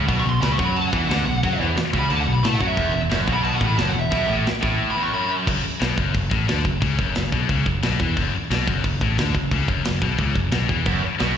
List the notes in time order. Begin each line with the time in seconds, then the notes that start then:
0.08 B1 B2, kick, crash
0.20 C#6
0.26 B1 B2 C6
0.41 C#2 C#3 B5, snare, crash
0.53 C#6
0.59 F#2 F#3, kick
0.64 B5
0.76 A5, crash
0.88 F#5
0.92 E2 E3, kick
0.97 F#5
1.09 D2 D3, snare, crash
1.26 B1 B2
1.43 F#2 F#3, kick, crash
1.60 E2 E3
1.77 muted distorted electric guitar stroke, muted picked electric bass stroke, snare, crash
1.93 C#2 C#3, kick
1.99 B5
2.10 D2 D3 A5, crash
2.21 F#5
2.27 B1 B2
2.32 B5
2.44 A2 A3 A5, snare, crash
2.54 F#5
2.61 F#2 F#3, kick
2.67 E5
2.77 E1 E2, kick, crash
2.94 E1 E2
3.10 F#1 F#2, snare, crash
3.27 B1 B2, kick
3.34 B5
3.44 A5, crash
3.55 F#5
3.61 A1 A2, kick
3.66 B5
3.77 F#1 F#2 A5, snare, crash
3.89 F#5
3.94 E1 E2
4.00 E5
4.11 B1 B2, kick, crash
4.28 A1 A2
4.45 muted distorted electric guitar stroke, muted picked electric bass stroke, snare, crash
4.61 A1 A2, kick
4.91 B5
4.96 E2
5.04 C#6
5.12 F#2 B5
5.47 F#1 F#2, kick, crash
5.63 muted distorted electric guitar stroke, muted picked electric bass stroke
5.80 B1 B2, snare, crash
5.96 F#1 F#2, kick
6.14 F#1 F#2, kick, crash
6.30 A1 A2, kick
6.48 D2 D3, snare, crash
6.65 F#1 F#2, kick
6.81 C#2 C#3, kick, crash
6.98 F#1 F#2, kick
7.15 F#1 F#2, snare, crash
7.32 B1 B2, kick
7.49 C#2 C#3, kick, crash
7.66 F#1 F#2, kick
7.83 B1 B2, snare, crash
8.00 E2 E3, kick
8.17 F#1 F#2, kick, crash
8.34 muted picked electric bass stroke, muted distorted electric guitar stroke
8.50 B1 B2, snare, crash
8.68 F#1 F#2, kick
8.84 F#1 F#2, kick, crash
9.01 A1 A2, kick
9.18 D2 D3, snare, crash
9.35 F#1 F#2, kick
9.51 C#2 C#3, kick, crash
9.68 F#1 F#2, kick
9.85 F#1 F#2, snare, crash
10.02 B1 B2, kick
10.18 C#2 C#3, kick, crash
10.36 F#1 F#2, kick
10.52 B1 B2, snare, crash
10.69 E2 E3, kick
10.85 F#1 F#2, kick, crash
11.03 muted distorted electric guitar stroke, muted picked electric bass stroke
11.19 B1 B2, snare, crash